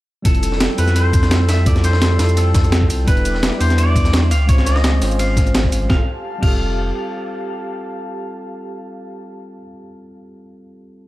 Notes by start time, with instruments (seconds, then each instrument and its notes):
0.22 sub bass F1, tine electric piano G3 C4 E4, analog synth pad A4 G5 E6, clean electric guitar A4, kick, closed hi-hat, ride
0.27 tine electric piano F4 A4
0.35 closed hi-hat
0.43 closed hi-hat, ride, shaker
0.52 snare
0.60 snare, closed hi-hat, ride
0.70 snare
0.75 sub bass F2, tine electric piano G3 C4 E4, clean electric guitar B4, open hi-hat, ride, shaker
0.80 tine electric piano F4 A4
0.88 snare, closed hi-hat, shaker
0.96 clean electric guitar C5, closed hi-hat, ride
1.13 kick, closed hi-hat, ride, shaker
1.23 snare, closed hi-hat, shaker
1.31 snare, closed hi-hat, ride
1.41 snare
1.49 clean electric guitar E5, snare, open hi-hat, ride, shaker
1.63 tine electric piano G3 C4 E4, clean electric guitar D5, kick, closed hi-hat, ride
1.68 tine electric piano F4 A4
1.76 snare, closed hi-hat
1.84 clean electric guitar C5, snare, closed hi-hat, ride, shaker
1.93 snare
2.02 snare, closed hi-hat, ride
2.11 snare
2.17 sub bass F2, tine electric piano G3 C4 E4, snare, open hi-hat, ride, shaker
2.21 tine electric piano F4 A4
2.29 closed hi-hat, shaker
2.37 clean electric guitar A4, snare, closed hi-hat, ride
2.55 kick, snare, closed hi-hat, ride, shaker
2.64 snare, closed hi-hat, shaker
2.72 snare, closed hi-hat, ride
2.82 kick
2.90 sub bass C2, open hi-hat, ride, shaker
3.05 sub bass E1, tine electric piano G3 B3 D4, analog synth pad B4 E5 D6, clean electric guitar B4, kick, closed hi-hat, ride
3.09 tine electric piano E4 B4
3.17 closed hi-hat
3.25 closed hi-hat, ride, shaker
3.35 snare
3.43 snare, closed hi-hat, ride
3.52 snare
3.58 sub bass E2, tine electric piano G3 B3 D4, clean electric guitar C5, open hi-hat, ride, shaker
3.62 tine electric piano E4 B4
3.70 snare, closed hi-hat, shaker
3.78 clean electric guitar D5, closed hi-hat, ride
3.96 kick, closed hi-hat, ride, shaker
4.05 snare, closed hi-hat, shaker
4.13 snare, closed hi-hat, ride
4.23 snare
4.31 sub bass C#2, analog synth pad C5 F5 G#5, clean electric guitar F5, open hi-hat, ride, shaker
4.46 tine electric piano G#3 C4 C#4, clean electric guitar C#5, kick, closed hi-hat, ride
4.50 tine electric piano F4 C5
4.58 snare, closed hi-hat
4.66 clean electric guitar D#5, snare, closed hi-hat, ride, shaker
4.76 snare
4.84 snare, closed hi-hat, ride
4.94 snare
4.99 sub bass G#1, tine electric piano G#3 C4 C#4, snare, open hi-hat, shaker
5.03 tine electric piano F4 C5
5.11 closed hi-hat, shaker
5.19 clean electric guitar F5, snare, closed hi-hat, ride
5.37 kick, snare, closed hi-hat, ride, shaker
5.46 snare, closed hi-hat, shaker
5.55 snare, closed hi-hat, ride
5.64 kick
5.72 sub bass G#1, open hi-hat, ride, shaker
5.85 tine electric piano G3 C4
5.89 sub bass F1, tine electric piano E4 F4, analog synth pad G4 F5 A5, clean electric guitar F5, kick, snare
5.94 tine electric piano A4
6.38 tine electric piano G3 C4
6.43 sub bass F1, tine electric piano F4 G4, clean electric guitar F5, kick, crash
6.47 tine electric piano A4